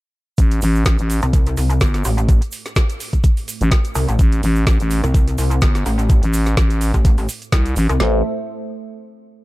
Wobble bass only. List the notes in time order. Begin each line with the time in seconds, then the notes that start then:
1.23 C2
1.57 C2
2.05 A1
3.95 C2
4.08 A1
5.04 C2
5.38 C2
5.86 A1
6.94 A1
7.18 A1
7.89 C2